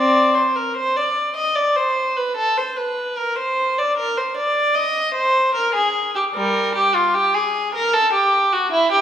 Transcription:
0.00 0.32 C4 medium
0.00 0.32 D5 medium
0.35 0.56 C5 medium
0.56 0.76 A#4 medium
0.76 0.96 C5 medium
0.96 1.36 D5 medium
1.36 1.56 D#5 medium
1.55 1.76 D5 medium
1.76 2.16 C5 medium
2.17 2.37 B4 medium
2.36 2.56 A4 medium
2.57 2.77 C5 medium
2.77 3.17 B4 medium
3.18 3.37 A#4 medium
3.38 3.77 C5 medium
3.78 3.97 D5 medium
3.97 4.16 A#4 medium
4.17 4.36 C5 medium
4.37 4.75 D5 medium
4.75 5.15 D#5 medium
5.14 5.54 C5 medium
5.54 5.74 A#4 medium
5.74 6.14 G#4 medium
6.15 6.23 G4 medium
6.35 6.72 G3 medium
6.35 6.74 A#4 medium
6.75 6.94 G4 medium
6.95 7.15 F4 medium
7.14 7.34 G4 medium
7.34 7.74 G#4 medium
7.75 7.93 A#4 medium
7.93 8.13 A4 loud
8.13 8.51 G4 medium
8.53 8.72 F#4 medium
8.72 8.91 E4 loud
8.92 9.01 G4 medium

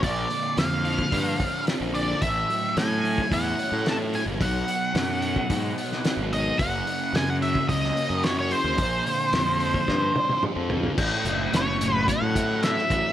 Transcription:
0.03 0.25 A#1 medium
0.03 1.40 A#2 medium
0.03 0.58 D5 medium
0.03 kick loud
0.03 open hi-hat medium
0.30 0.55 D3 medium
0.30 open hi-hat soft
0.57 1.01 F2 medium
0.57 1.93 D3 medium
0.57 1.63 F5 medium
0.57 snare loud
0.57 open hi-hat medium
0.84 1.64 F3 medium
0.84 open hi-hat soft
0.99 kick medium
1.11 1.34 G2 medium
1.11 2.21 D4 medium
1.11 kick medium
1.11 open hi-hat medium
1.38 2.21 C4 medium
1.38 kick medium
1.38 open hi-hat medium
1.65 2.21 F3 medium
1.65 snare loud
1.65 open hi-hat medium
1.81 2.13 A#1 medium
1.94 2.21 D3 medium
1.94 2.20 D5 medium
1.94 open hi-hat soft
2.21 2.43 A1 medium
2.21 2.74 A2 medium
2.21 2.78 E5 medium
2.21 kick loud
2.21 open hi-hat medium
2.48 3.02 F#3 medium
2.48 open hi-hat soft
2.75 4.12 A2 medium
2.75 3.20 A2 medium
2.75 3.33 G#5 loud
2.75 snare loud
2.75 open hi-hat medium
3.03 3.86 F#3 medium
3.03 open hi-hat soft
3.18 kick medium
3.31 3.53 E2 medium
3.31 4.40 E4 medium
3.31 3.88 F#5 medium
3.31 kick loud
3.31 open hi-hat medium
3.59 4.41 C#4 medium
3.59 open hi-hat soft
3.72 4.15 A2 medium
3.86 4.67 F#3 medium
3.86 3.95 A5 medium
3.86 snare loud
3.86 open hi-hat medium
4.13 4.40 A2 medium
4.13 4.22 G#5 loud
4.13 open hi-hat soft
4.26 4.40 F#1 medium
4.40 4.62 B1 medium
4.40 4.93 B2 medium
4.40 6.33 F#5 medium
4.40 kick loud
4.40 open hi-hat medium
4.68 5.21 F#3 medium
4.68 open hi-hat medium
4.94 5.38 F#2 medium
4.94 6.29 B2 medium
4.94 snare loud
4.94 open hi-hat medium
5.22 6.03 F#3 medium
5.22 open hi-hat medium
5.36 kick medium
5.49 5.71 G#2 medium
5.49 6.59 D#4 medium
5.49 kick medium
5.49 open hi-hat medium
5.77 6.59 B3 medium
5.77 open hi-hat medium
5.92 snare soft
6.04 6.59 F#3 medium
6.04 snare loud
6.04 open hi-hat medium
6.17 6.50 G#1 medium
6.31 6.59 B2 medium
6.31 6.59 D#5 medium
6.31 open hi-hat soft
6.59 6.81 F#1 loud
6.59 7.96 F#2 medium
6.59 7.16 F#5 medium
6.59 kick loud
6.59 open hi-hat medium
6.87 7.14 C#3 medium
6.87 open hi-hat soft
7.13 7.57 F#2 medium
7.13 8.50 C#3 medium
7.13 7.28 G#5 loud
7.13 snare loud
7.13 open hi-hat medium
7.30 7.35 F#5 medium
7.42 8.22 F#3 medium
7.42 7.68 E5 medium
7.42 open hi-hat soft
7.55 kick medium
7.69 7.90 C#2 medium
7.69 8.79 C#4 medium
7.69 8.25 D#5 medium
7.69 kick medium
7.69 open hi-hat medium
7.84 snare soft
7.96 8.78 A#3 medium
7.96 open hi-hat soft
8.10 8.53 F#2 medium
8.23 8.78 F#3 medium
8.23 8.36 C#5 medium
8.23 snare loud
8.23 open hi-hat medium
8.39 8.52 C#5 medium
8.51 8.79 C#3 medium
8.51 10.43 C5 medium
8.51 open hi-hat soft
8.64 8.79 D#2 medium
8.78 9.00 A#1 medium
8.78 10.15 A#2 medium
8.78 kick loud
8.78 open hi-hat medium
9.07 9.32 D3 medium
9.07 open hi-hat medium
9.33 9.76 F2 medium
9.33 10.70 D3 medium
9.33 snare loud
9.33 open hi-hat medium
9.60 10.42 F3 medium
9.60 open hi-hat medium
9.74 kick medium
9.88 10.10 G2 medium
9.88 10.98 D4 medium
9.88 kick medium
9.88 snare medium
10.16 10.98 C4 medium
10.16 high tom medium
10.29 high tom medium
10.43 10.98 F3 medium
10.43 mid tom medium
10.56 10.89 F2 medium
10.70 10.98 D3 medium
10.70 floor tom medium
10.83 floor tom medium
10.98 11.09 A1 medium
10.98 11.79 A2 medium
10.98 kick loud
10.98 crash loud
11.25 11.47 F#1 medium
11.25 12.08 F#3 medium
11.25 closed hi-hat medium
11.53 12.07 F#1 medium
11.53 12.90 C#4 medium
11.53 12.06 C#5 medium
11.53 snare loud
11.53 closed hi-hat medium
11.80 12.89 A2 medium
11.80 closed hi-hat medium
12.08 12.63 F#3 medium
12.08 12.60 F#5 loud
12.08 kick loud
12.08 closed hi-hat medium
12.22 12.76 A2 medium
12.35 13.13 E4 medium
12.35 kick medium
12.35 closed hi-hat medium
12.63 13.13 F#3 medium
12.63 13.13 E5 medium
12.63 snare loud
12.63 closed hi-hat medium
12.78 snare soft
12.90 13.01 A1 medium
12.90 13.13 A2 medium
12.90 kick medium
12.90 closed hi-hat medium

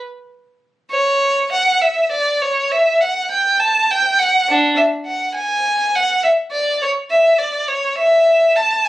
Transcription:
0.91 1.48 C#5 medium
1.52 1.81 F#5 medium
1.82 2.11 E5 medium
2.11 2.41 D5 medium
2.42 2.71 C#5 medium
2.71 3.01 E5 medium
3.01 3.30 F#5 medium
3.31 3.59 G5 medium
3.60 3.89 A5 medium
3.91 4.19 G5 medium
4.19 4.48 F#5 medium
4.49 4.77 D4 medium
4.77 4.85 E5 medium
5.06 5.35 F#5 medium
5.35 5.93 G#5 medium
5.95 6.24 F#5 medium
6.24 6.32 E5 medium
6.52 6.80 D5 medium
6.82 6.90 C#5 medium
7.11 7.38 E5 medium
7.39 7.68 D5 medium
7.68 7.97 C#5 medium
7.98 8.55 E5 medium
8.56 8.85 A5 medium
8.85 8.89 G#5 medium

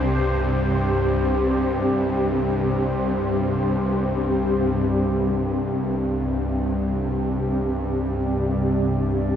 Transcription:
0.00 4.91 C2 medium
0.00 4.91 G2 medium
0.00 4.92 C4 medium
0.00 4.92 G4 medium
0.00 4.94 C5 medium
0.00 4.92 D5 medium
4.92 9.36 C2 medium
4.92 9.36 G2 medium
4.92 9.36 C4 medium
5.76 9.36 G4 medium
6.67 9.36 D5 medium

